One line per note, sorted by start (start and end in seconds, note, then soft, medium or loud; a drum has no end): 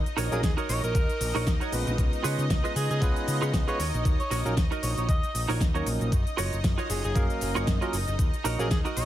0.00 6.11 D#4 medium
0.00 6.11 D#5 medium
0.06 closed hi-hat soft
0.06 shaker soft
0.17 0.28 A#1 loud
0.17 0.37 D#4 loud
0.17 0.37 F#4 medium
0.17 0.38 A#4 loud
0.17 0.38 C#5 loud
0.17 open hi-hat loud
0.17 shaker medium
0.32 0.40 A#1 medium
0.32 0.40 F#3 loud
0.32 0.40 A#3 medium
0.32 0.40 C#4 medium
0.32 0.41 D#4 medium
0.32 0.39 G#4 medium
0.32 0.41 A#4 loud
0.32 closed hi-hat soft
0.32 shaker soft
0.43 0.54 D#2 medium
0.43 0.52 G#4 medium
0.43 kick loud
0.43 snare loud
0.43 closed hi-hat medium
0.43 shaker soft
0.57 0.95 D#4 medium
0.57 0.95 F#4 medium
0.57 0.95 A#4 medium
0.57 0.95 C#5 medium
0.57 closed hi-hat soft
0.57 shaker soft
0.69 0.80 A#1 loud
0.69 0.81 C#5 medium
0.69 open hi-hat loud
0.69 shaker medium
0.83 0.92 A#1 medium
0.83 1.55 A#4 loud
0.83 closed hi-hat soft
0.83 shaker soft
0.95 1.06 D#2 loud
0.95 kick loud
0.95 closed hi-hat medium
0.95 shaker soft
1.09 closed hi-hat soft
1.09 shaker soft
1.21 1.32 A#1 loud
1.21 open hi-hat loud
1.21 shaker medium
1.35 1.44 A#1 loud
1.35 1.46 D#4 loud
1.35 1.47 F#4 loud
1.35 1.47 A#4 loud
1.35 1.47 C#5 loud
1.35 open hi-hat medium
1.35 shaker soft
1.47 1.58 D#2 medium
1.47 kick loud
1.47 snare loud
1.47 closed hi-hat medium
1.47 shaker soft
1.60 1.72 D#4 medium
1.60 1.72 F#4 medium
1.60 1.73 A#4 medium
1.60 1.73 C#5 medium
1.60 closed hi-hat soft
1.60 shaker soft
1.72 1.84 A#1 medium
1.72 2.99 G#3 medium
1.72 2.99 B3 medium
1.72 2.99 C#4 medium
1.72 2.99 F4 medium
1.72 3.00 B4 medium
1.72 open hi-hat loud
1.72 shaker medium
1.86 1.96 A#1 loud
1.86 muted clean electric guitar stroke soft
1.86 closed hi-hat soft
1.86 shaker soft
1.98 2.09 C#2 loud
1.98 kick loud
1.98 closed hi-hat medium
1.98 shaker soft
2.13 closed hi-hat soft
2.13 shaker soft
2.23 2.35 C#3 loud
2.23 2.44 F4 loud
2.23 2.44 G#4 loud
2.23 2.44 B4 loud
2.23 2.45 C#5 loud
2.23 open hi-hat loud
2.23 shaker medium
2.38 2.47 C#3 medium
2.38 closed hi-hat soft
2.38 shaker soft
2.50 2.61 C#2 medium
2.50 kick loud
2.50 snare loud
2.50 closed hi-hat medium
2.50 shaker soft
2.64 3.01 F4 medium
2.64 3.02 G#4 medium
2.64 3.02 B4 medium
2.64 3.02 D#5 medium
2.64 closed hi-hat soft
2.64 shaker soft
2.76 2.87 C#3 loud
2.76 2.87 G#4 medium
2.76 open hi-hat loud
2.76 shaker medium
2.91 2.99 C#3 medium
2.91 3.11 G#4 medium
2.91 closed hi-hat soft
2.91 shaker soft
3.01 3.13 C#2 loud
3.01 3.64 G#3 loud
3.01 3.64 B3 medium
3.01 3.65 C#4 medium
3.01 3.65 F4 medium
3.01 3.65 B4 loud
3.01 kick loud
3.01 closed hi-hat medium
3.01 shaker soft
3.16 closed hi-hat soft
3.16 shaker soft
3.28 3.39 C#3 loud
3.28 open hi-hat loud
3.28 shaker medium
3.42 3.51 C#3 loud
3.42 3.53 F4 loud
3.42 3.53 G#4 loud
3.42 3.54 B4 loud
3.42 3.54 C#5 loud
3.42 closed hi-hat soft
3.42 shaker soft
3.54 3.65 C#2 medium
3.54 kick loud
3.54 snare loud
3.54 closed hi-hat medium
3.54 shaker soft
3.67 3.78 G#3 medium
3.67 3.78 B3 medium
3.67 3.78 C#4 medium
3.67 3.78 F4 medium
3.67 3.79 G#4 medium
3.67 3.79 B4 medium
3.67 3.78 B4 loud
3.67 3.85 C#5 loud
3.67 3.80 D#5 loud
3.67 closed hi-hat soft
3.67 shaker soft
3.79 3.90 D#2 medium
3.79 4.22 D#4 medium
3.79 4.22 F#4 medium
3.79 4.22 A#4 medium
3.79 4.22 C#5 medium
3.79 open hi-hat loud
3.79 shaker medium
3.94 4.03 A#1 loud
3.94 closed hi-hat soft
3.94 shaker soft
4.05 4.16 D#2 medium
4.05 kick loud
4.05 closed hi-hat medium
4.05 shaker soft
4.20 4.40 C#5 medium
4.20 closed hi-hat soft
4.20 shaker soft
4.30 4.42 A#1 loud
4.30 4.51 D#4 loud
4.30 4.51 F#4 loud
4.30 4.51 A#4 loud
4.30 4.52 C#5 loud
4.30 open hi-hat loud
4.30 shaker medium
4.45 4.54 A#1 medium
4.45 4.54 F#3 medium
4.45 4.54 A#3 medium
4.45 4.54 C#4 medium
4.45 4.54 D#4 medium
4.45 4.54 A#4 loud
4.45 closed hi-hat soft
4.45 shaker soft
4.57 4.68 D#2 medium
4.57 kick loud
4.57 snare loud
4.57 closed hi-hat medium
4.57 shaker soft
4.71 5.08 D#4 medium
4.71 5.09 F#4 medium
4.71 5.09 A#4 medium
4.71 5.09 D#5 medium
4.71 closed hi-hat soft
4.71 shaker soft
4.83 4.94 A#1 medium
4.83 4.92 C#5 medium
4.83 open hi-hat loud
4.83 shaker medium
4.97 5.06 A#1 medium
4.97 5.05 C#5 medium
4.97 closed hi-hat soft
4.97 shaker soft
5.09 5.20 D#2 loud
5.09 5.49 D#5 medium
5.09 kick loud
5.09 closed hi-hat medium
5.09 shaker soft
5.23 closed hi-hat soft
5.23 shaker soft
5.34 5.46 A#1 medium
5.34 open hi-hat loud
5.34 shaker medium
5.48 5.58 A#1 medium
5.48 5.60 D#4 loud
5.48 5.60 F#4 loud
5.48 5.61 A#4 loud
5.48 5.61 C#5 loud
5.48 open hi-hat medium
5.48 shaker soft
5.60 5.81 D#2 medium
5.60 kick loud
5.60 snare loud
5.60 closed hi-hat medium
5.60 shaker soft
5.74 6.11 F#3 medium
5.74 6.11 A#3 medium
5.74 6.11 C#4 medium
5.74 5.86 D#4 medium
5.74 6.11 D#4 medium
5.74 5.86 F#4 medium
5.74 5.86 A#4 medium
5.74 6.11 A#4 medium
5.74 5.87 C#5 medium
5.74 closed hi-hat soft
5.74 shaker soft
5.86 5.97 A#1 medium
5.86 open hi-hat loud
5.86 shaker medium
6.00 6.09 A#1 medium
6.00 muted clean electric guitar stroke soft
6.00 closed hi-hat soft
6.00 shaker soft
6.12 6.23 F#2 loud
6.12 9.05 D#4 medium
6.12 9.05 D#5 medium
6.12 kick loud
6.12 closed hi-hat medium
6.12 shaker soft
6.27 closed hi-hat soft
6.27 shaker soft
6.37 6.49 F#1 loud
6.37 6.58 F4 loud
6.37 6.58 F#4 loud
6.37 6.58 A#4 loud
6.37 6.58 C#5 loud
6.37 open hi-hat loud
6.37 shaker medium
6.53 6.61 F#1 medium
6.53 closed hi-hat soft
6.53 shaker soft
6.64 6.75 F#2 medium
6.64 kick loud
6.64 snare loud
6.64 closed hi-hat medium
6.64 shaker soft
6.78 7.15 F4 medium
6.78 7.15 F#4 medium
6.78 7.16 A#4 medium
6.78 7.16 C#5 medium
6.78 closed hi-hat soft
6.78 shaker soft
6.90 7.01 F#1 loud
6.90 7.01 G#4 medium
6.90 open hi-hat loud
6.90 shaker medium
7.04 7.13 F#1 medium
7.04 7.25 G#4 medium
7.04 closed hi-hat soft
7.04 shaker soft
7.15 7.27 F#2 loud
7.15 7.78 F#3 loud
7.15 7.78 A#3 medium
7.15 7.78 C#4 medium
7.15 7.79 A#4 loud
7.15 7.79 F5 medium
7.15 kick loud
7.15 closed hi-hat medium
7.15 shaker soft
7.30 closed hi-hat soft
7.30 shaker soft
7.41 7.53 F#1 loud
7.41 open hi-hat loud
7.41 shaker medium
7.55 7.65 F#1 medium
7.55 7.67 F4 loud
7.55 7.67 F#4 loud
7.55 7.67 A#4 loud
7.55 7.68 C#5 loud
7.55 closed hi-hat soft
7.55 shaker soft
7.67 7.78 F#2 medium
7.67 kick loud
7.67 snare loud
7.67 closed hi-hat medium
7.67 shaker soft
7.81 7.96 F#3 loud
7.81 7.96 A#3 medium
7.81 7.96 C#4 medium
7.81 7.93 F4 medium
7.81 7.96 F4 medium
7.81 7.93 F#4 medium
7.81 7.93 A#4 medium
7.81 7.96 A#4 loud
7.81 7.94 D#5 medium
7.81 closed hi-hat soft
7.81 shaker soft
7.93 8.04 F#1 medium
7.93 open hi-hat loud
7.93 shaker medium
8.07 8.16 F#1 loud
8.07 muted clean electric guitar stroke soft
8.07 closed hi-hat soft
8.07 shaker soft
8.19 8.30 D#2 loud
8.19 kick loud
8.19 closed hi-hat medium
8.19 shaker soft
8.34 closed hi-hat soft
8.34 shaker soft
8.44 8.56 A#1 loud
8.44 8.65 D#4 loud
8.44 8.65 F#4 loud
8.44 8.65 A#4 loud
8.44 8.65 C#5 loud
8.44 open hi-hat loud
8.44 shaker medium
8.59 8.68 A#1 medium
8.59 8.68 F#3 loud
8.59 8.68 A#3 medium
8.59 8.68 C#4 medium
8.59 8.68 D#4 medium
8.59 8.67 G#4 medium
8.59 8.68 A#4 loud
8.59 closed hi-hat soft
8.59 shaker soft
8.70 8.82 D#2 medium
8.70 8.80 G#4 medium
8.70 kick loud
8.70 snare loud
8.70 closed hi-hat medium
8.70 shaker soft
8.85 9.05 D#4 medium
8.85 9.05 F#4 medium
8.85 9.05 A#4 medium
8.85 9.05 D#5 medium
8.85 closed hi-hat soft
8.85 shaker soft
8.96 9.05 A#1 loud
8.96 9.05 C#5 medium
8.96 open hi-hat loud
8.96 shaker medium